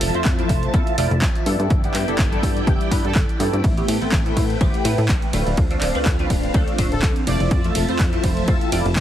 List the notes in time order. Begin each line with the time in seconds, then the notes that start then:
Already playing: F3 A3 C4 E4 F4 A4 E5 A5
0.01 F1, open hi-hat
0.14 F2 A3 C4 E4 F4 C5, closed hi-hat
0.25 F2, kick, clap, closed hi-hat
0.38 A3 C4 E4 F4 C5, closed hi-hat
0.49 F1, kick, open hi-hat
0.63 closed hi-hat
0.74 F2 A3 C4 E4 F4 A4, kick, closed hi-hat
0.87 closed hi-hat
0.98 F1 A3 C4 E4 F4 D5, open hi-hat
1.11 F1, closed hi-hat
1.22 F2, kick, clap, closed hi-hat
1.35 closed hi-hat
1.46 G2 G3 B3 D4 E4 A4 D5 G5, open hi-hat
1.59 G2, closed hi-hat
1.70 G1, kick, closed hi-hat
1.84 G3 B3 D4 E4 G4, closed hi-hat
1.94 G2, clap, open hi-hat
2.08 G1 G3 B3 D4 E4 A4, closed hi-hat
2.19 G1, kick, clap, closed hi-hat
2.32 G3 B3 D4 E4 A4, closed hi-hat
2.43 G2, kick, open hi-hat
2.57 closed hi-hat
2.67 G1 G3 B3 D4 E4 G4, kick, closed hi-hat
2.81 closed hi-hat
2.91 G2 G3 B3 D4 E4 B4, kick, open hi-hat
3.05 G2 A4, closed hi-hat
3.15 G1, kick, clap, closed hi-hat
3.29 closed hi-hat
3.39 G2 A3 B3 C4 E4 A4, open hi-hat
3.53 G2, closed hi-hat
3.64 A1 A3 B4 G5, kick, closed hi-hat, ride
3.77 A3 B3 C4 E4 G4, closed hi-hat
3.88 A2, open hi-hat, ride
4.01 A1 A3 B3 C4 E4 A4, closed hi-hat
4.12 A1, kick, clap, closed hi-hat, ride
4.25 A3 B3 C4 E4 A4, closed hi-hat
4.37 A2, kick, open hi-hat, ride
4.50 closed hi-hat
4.61 A1 A3 B3 C4 E4 G4, kick, closed hi-hat, ride
4.74 closed hi-hat
4.84 A2 A3 B3 C4 E4 B4, open hi-hat, ride
4.98 A2, closed hi-hat
5.09 A1, kick, clap, closed hi-hat, ride
5.22 closed hi-hat
5.33 D1 A3 C4 D4 F4 B4 F5, open hi-hat, ride
5.47 D1, closed hi-hat
5.57 D2, kick, closed hi-hat, ride
5.70 A3 C4 D4 F4 A4, closed hi-hat
5.81 D1, clap, open hi-hat, ride
5.95 D2 A3 C4 D4 F4 B4, closed hi-hat
6.05 D2, kick, clap, closed hi-hat, ride
6.19 A3 C4 D4 F4 B4, closed hi-hat
6.30 D1, kick, open hi-hat, ride
6.43 closed hi-hat
6.54 D2 A3 C4 D4 F4 A4, kick, closed hi-hat, ride
6.68 closed hi-hat
6.78 D1 A3 C4 D4 F4 C5, kick, open hi-hat, ride
6.92 D1 A4, closed hi-hat
7.02 D2, kick, clap, closed hi-hat, ride
7.16 closed hi-hat
7.27 F1 F3 A3 C4 E4 F4 C5 D5 E5 A5, open hi-hat, ride
7.40 F1, closed hi-hat
7.51 F2, kick, closed hi-hat, ride
7.64 A3 C4 E4 F4 A4, closed hi-hat
7.75 F1, open hi-hat, ride
7.88 F2 A3 C4 E4 F4 C5, closed hi-hat
7.99 F2, kick, clap, closed hi-hat, ride
8.13 A3 C4 E4 F4 C5, closed hi-hat
8.24 F1, kick, open hi-hat, ride
8.37 closed hi-hat
8.48 F2 A3 C4 E4 F4 A4, kick, closed hi-hat, ride
8.61 closed hi-hat
8.72 F1 A3 C4 E4 F4 D5, open hi-hat, ride
8.86 F1, closed hi-hat
8.96 F2, kick, clap, closed hi-hat, ride